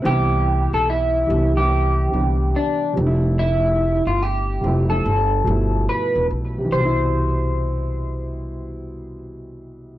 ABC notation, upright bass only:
X:1
M:4/4
L:1/16
Q:"Swing 16ths" 1/4=72
K:C
V:1 name="Upright bass" clef=bass
C,,3 B,,,3 C,,4 C,,2 z2 F,,,2- | F,,,3 G,,,3 F,,,2 G,,,2 G,,,2 z E,,, B,,,2 | C,,16 |]